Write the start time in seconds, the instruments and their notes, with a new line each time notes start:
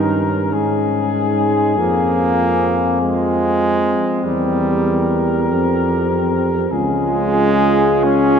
Already playing: tuba G2, trombone D#3, trombone section C#4, french horn section D#4, flugelhorn A#4
0.53 tuba G#2, flugelhorn G#4
1.37 trombone G#3
1.77 tuba F2, trombone A#3, trombone section C4, french horn section F4
3.02 trombone G#3
4.24 tuba E2, trombone G3, french horn section G4, flugelhorn A#4
5.50 tuba F2, trombone section C4
6.71 tuba C#2, trombone G#3, trombone section C#4, french horn section F4, flugelhorn G#4
8.04 trombone C#4